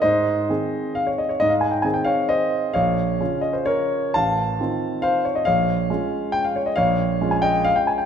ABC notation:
X:1
M:3/4
L:1/16
Q:1/4=134
K:Bbdor
V:1 name="Grand piano"
[ce]8 f d e d | e f a g a g [df]2 [ce]4 | [df]6 e c [Bd]4 | [f=a]8 [cf]2 d e |
[df]8 g f d e | [df]4- [df] a [eg]2 f g a g |]
V:2 name="Grand piano"
A,,4 [E,CA]8 | A,,4 [E,CA]8 | B,,,4 [D,DF]8 | =A,,,4 [E,CF]8 |
B,,,4 [A,DF]8 | B,,,4 [A,DF]8 |]